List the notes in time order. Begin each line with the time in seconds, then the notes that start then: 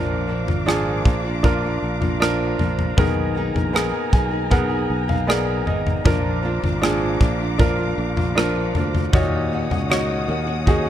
Already playing: A#1 A#2 F3 A#3 D4 F4 A#4 F5 A#5 D6
0.27 F3 A#3 D4 F4
0.47 G#1 A#3 D4 F4, floor tom
0.66 A#2 F3 A#3 D4 F4 G#4, cross-stick
1.05 A#1 F3 A#3 D4 F4, kick
1.24 A#3 D4 F4
1.43 F3 A#3 D4 F4 A#4, kick, floor tom
1.62 A#3 D4 F4
1.83 A#1
2.01 A#3 D4 F4, floor tom
2.20 A#2 F3 A#3 D4 F4 A#4, cross-stick
2.59 A#1 F3 A#3 D4 F4, floor tom
2.79 floor tom
2.97 B1 B2 D#3 A#3 B3 D#4 G#4 A#4 G#5, kick, floor tom
3.35 D#3 A#3 D#4 G#4
3.54 A#1 A#3 D#4 G#4, floor tom
3.73 B2 D#3 A#3 B3 D#4 G#4 A#4, cross-stick
4.12 B1 D#3 A#3 D#4 G#4 G#5, kick
4.31 A#3 D#4 G#4
4.50 D#3 A#3 B3 D#4 G#4 A#4 F#5, kick, floor tom
4.69 A#3 D#4 G#4
4.90 B1
5.08 A#3 D#4 G#4 F5, floor tom
5.27 B2 D#3 A#3 B3 D#4 G#4 A#4 D5, cross-stick
5.65 G#1 D#3 A#3 D#4 G#4 D#5, floor tom
5.87 floor tom
6.04 A#1 A#2 F3 A#3 D4 F4 A#4 F5 D6, kick, floor tom
6.43 F3 A#3 D4 F4
6.62 G#1 A#3 D4 F4, floor tom
6.82 A#2 F3 A#3 D4 F4 G#4, cross-stick
7.20 A#1 F3 A#3 D4 F4, kick
7.40 A#3 D4 F4
7.58 F3 A#3 D4 F4 A#4, kick, floor tom
7.78 A#3 D4 F4
7.98 A#1
8.17 A#3 D4 F4, floor tom
8.35 A#2 F3 A#3 D4 F4 A#4, cross-stick
8.74 D2 F3 A#3 D4 F4, floor tom
8.95 floor tom
9.13 D#2 A#2 D#3 A#3 C#4 D#4 F#4 C#5 F#5 D#6, kick, floor tom
9.51 D#3 A#3 C#4 F#4
9.70 C#2 A#3 C#4 F#4, floor tom
9.89 D#3 A#3 C#4 D#4 F#4 C#5, cross-stick
10.28 D#2 D#3 A#3 C#4 F#4
10.47 A#3 C#4 F#4
10.66 D#3 A#3 C#4 D#4 F#4 G#4, kick, floor tom
10.85 F#4